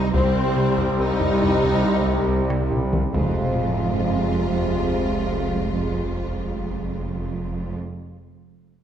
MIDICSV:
0, 0, Header, 1, 13, 480
1, 0, Start_track
1, 0, Key_signature, -4, "minor"
1, 0, Tempo, 857143
1, 77, Time_signature, 4, 2, 24, 8
1, 4948, End_track
2, 0, Start_track
2, 0, Title_t, "Violin section"
2, 0, Program_c, 0, 48
2, 0, Note_on_c, 0, 75, 127
2, 75, Note_on_c, 0, 72, 127
2, 78, Note_off_c, 0, 75, 0
2, 546, Note_off_c, 0, 72, 0
2, 554, Note_on_c, 0, 75, 127
2, 1515, Note_off_c, 0, 75, 0
2, 1754, Note_on_c, 0, 77, 105
2, 4341, Note_off_c, 0, 77, 0
2, 4948, End_track
3, 0, Start_track
3, 0, Title_t, "Violin section"
3, 0, Program_c, 1, 48
3, 0, Note_on_c, 1, 63, 127
3, 74, Note_on_c, 1, 60, 127
3, 75, Note_off_c, 1, 63, 0
3, 546, Note_off_c, 1, 60, 0
3, 557, Note_on_c, 1, 63, 127
3, 1517, Note_off_c, 1, 63, 0
3, 1757, Note_on_c, 1, 65, 97
3, 4342, Note_off_c, 1, 65, 0
3, 4948, End_track
4, 0, Start_track
4, 0, Title_t, "French horn section"
4, 0, Program_c, 2, 60
4, 69, Note_on_c, 2, 60, 117
4, 71, Note_on_c, 2, 67, 121
4, 1731, Note_off_c, 2, 60, 0
4, 1732, Note_off_c, 2, 67, 0
4, 1750, Note_on_c, 2, 60, 92
4, 1751, Note_on_c, 2, 65, 95
4, 4339, Note_off_c, 2, 60, 0
4, 4339, Note_off_c, 2, 65, 0
4, 4948, End_track
5, 0, Start_track
5, 0, Title_t, "Analog synth pad"
5, 0, Program_c, 3, 89
5, 0, Note_on_c, 3, 55, 90
5, 0, Note_on_c, 3, 60, 95
5, 0, Note_on_c, 3, 67, 92
5, 67, Note_off_c, 3, 55, 0
5, 67, Note_off_c, 3, 67, 0
5, 68, Note_off_c, 3, 60, 0
5, 74, Note_on_c, 3, 55, 109
5, 74, Note_on_c, 3, 67, 99
5, 74, Note_on_c, 3, 72, 101
5, 75, Note_on_c, 3, 60, 97
5, 1733, Note_off_c, 3, 55, 0
5, 1733, Note_off_c, 3, 60, 0
5, 1733, Note_off_c, 3, 67, 0
5, 1733, Note_off_c, 3, 72, 0
5, 1753, Note_on_c, 3, 60, 88
5, 1753, Note_on_c, 3, 72, 87
5, 1754, Note_on_c, 3, 68, 93
5, 1755, Note_on_c, 3, 53, 92
5, 4341, Note_off_c, 3, 60, 0
5, 4341, Note_off_c, 3, 68, 0
5, 4341, Note_off_c, 3, 72, 0
5, 4342, Note_off_c, 3, 53, 0
5, 4948, End_track
6, 0, Start_track
6, 0, Title_t, "Viola section"
6, 0, Program_c, 4, 48
6, 74, Note_on_c, 4, 60, 107
6, 76, Note_on_c, 4, 55, 119
6, 1733, Note_off_c, 4, 60, 0
6, 1734, Note_off_c, 4, 55, 0
6, 1754, Note_on_c, 4, 56, 93
6, 1755, Note_on_c, 4, 60, 86
6, 4341, Note_off_c, 4, 56, 0
6, 4342, Note_off_c, 4, 60, 0
6, 4948, End_track
7, 0, Start_track
7, 0, Title_t, "Trombone section"
7, 0, Program_c, 5, 61
7, 77, Note_on_c, 5, 48, 112
7, 78, Note_on_c, 5, 55, 103
7, 1735, Note_off_c, 5, 48, 0
7, 1735, Note_off_c, 5, 55, 0
7, 1758, Note_on_c, 5, 56, 89
7, 1760, Note_on_c, 5, 48, 92
7, 4343, Note_off_c, 5, 56, 0
7, 4344, Note_off_c, 5, 48, 0
7, 4948, End_track
8, 0, Start_track
8, 0, Title_t, "Cello section"
8, 0, Program_c, 6, 48
8, 75, Note_on_c, 6, 36, 124
8, 1734, Note_off_c, 6, 36, 0
8, 1755, Note_on_c, 6, 41, 100
8, 4342, Note_off_c, 6, 41, 0
8, 4948, End_track
9, 0, Start_track
9, 0, Title_t, "Analog synth bass"
9, 0, Program_c, 7, 38
9, 75, Note_on_c, 7, 36, 127
9, 148, Note_off_c, 7, 36, 0
9, 198, Note_on_c, 7, 36, 87
9, 270, Note_off_c, 7, 36, 0
9, 316, Note_on_c, 7, 48, 87
9, 389, Note_off_c, 7, 48, 0
9, 436, Note_on_c, 7, 36, 89
9, 508, Note_off_c, 7, 36, 0
9, 556, Note_on_c, 7, 36, 127
9, 628, Note_off_c, 7, 36, 0
9, 676, Note_on_c, 7, 36, 91
9, 748, Note_off_c, 7, 36, 0
9, 798, Note_on_c, 7, 36, 91
9, 870, Note_off_c, 7, 36, 0
9, 915, Note_on_c, 7, 36, 127
9, 988, Note_off_c, 7, 36, 0
9, 1039, Note_on_c, 7, 48, 91
9, 1110, Note_off_c, 7, 48, 0
9, 1160, Note_on_c, 7, 36, 99
9, 1231, Note_off_c, 7, 36, 0
9, 1276, Note_on_c, 7, 36, 127
9, 1349, Note_off_c, 7, 36, 0
9, 1400, Note_on_c, 7, 48, 90
9, 1471, Note_off_c, 7, 48, 0
9, 1519, Note_on_c, 7, 36, 89
9, 1591, Note_off_c, 7, 36, 0
9, 1641, Note_on_c, 7, 36, 116
9, 1712, Note_off_c, 7, 36, 0
9, 4948, End_track
10, 0, Start_track
10, 0, Title_t, "Sub bass"
10, 0, Program_c, 8, 38
10, 0, Note_on_c, 8, 36, 107
10, 70, Note_off_c, 8, 36, 0
10, 73, Note_on_c, 8, 36, 103
10, 1733, Note_off_c, 8, 36, 0
10, 1755, Note_on_c, 8, 29, 104
10, 4342, Note_off_c, 8, 29, 0
10, 4948, End_track
11, 0, Start_track
11, 0, Title_t, "Double bass section"
11, 0, Program_c, 10, 48
11, 74, Note_on_c, 10, 36, 127
11, 1733, Note_off_c, 10, 36, 0
11, 1757, Note_on_c, 10, 29, 85
11, 4343, Note_off_c, 10, 29, 0
11, 4948, End_track
12, 0, Start_track
12, 0, Title_t, "Sub drop"
12, 0, Program_c, 11, 103
12, 1757, Note_on_c, 11, 60, 98
12, 4391, Note_off_c, 11, 60, 0
12, 4948, End_track
13, 0, Start_track
13, 0, Title_t, "Taiko and cinematic ensemble drums"
13, 79, Note_on_c, 9, 41, 127
13, 135, Note_off_c, 9, 41, 0
13, 437, Note_on_c, 9, 43, 74
13, 493, Note_off_c, 9, 43, 0
13, 678, Note_on_c, 9, 43, 74
13, 734, Note_off_c, 9, 43, 0
13, 798, Note_on_c, 9, 43, 66
13, 854, Note_off_c, 9, 43, 0
13, 921, Note_on_c, 9, 41, 84
13, 977, Note_off_c, 9, 41, 0
13, 1402, Note_on_c, 9, 37, 45
13, 1458, Note_off_c, 9, 37, 0
13, 1523, Note_on_c, 9, 45, 95
13, 1579, Note_off_c, 9, 45, 0
13, 1641, Note_on_c, 9, 47, 116
13, 1697, Note_off_c, 9, 47, 0
13, 1761, Note_on_c, 9, 41, 105
13, 1817, Note_off_c, 9, 41, 0
13, 4948, End_track
0, 0, End_of_file